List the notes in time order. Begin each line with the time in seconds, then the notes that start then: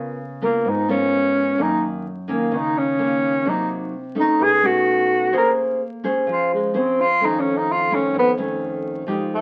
Already playing: C#3 B3 F4 A#4
0.42 A#3 B3 F4 A#4
0.65 G#2
0.69 D#4
0.88 B3 C#4 F4 A#4
1.58 F#2 D#3 A#3 C#4 D#4
2.28 D#3 A#3 C#4
2.52 C#3
2.56 D#4
2.78 C#4
2.99 D#3 A#3 C#4
3.45 C3 F#3 A#3 D#4
4.15 A3 C#4 D#4
4.20 D#4
4.39 B2 G#4
4.63 A3 C#4 D#4 F#4
5.32 A#3 C#4 G#4 C5
5.38 A#4
6.04 C#4 G#4 C5
6.27 F3
6.31 F4
6.54 G#3
6.74 C4 C#4 G#4 C5
7.01 F4
7.21 F2 D#3 A3 C#4
7.25 D#4
7.40 C#4
7.57 D#4
7.72 F4
7.91 D#3 A3 C#4
8.14 F2
8.19 B3
8.37 D#3 A3 C#4
9.07 F3 G#3 D#4 G4
9.34 A#3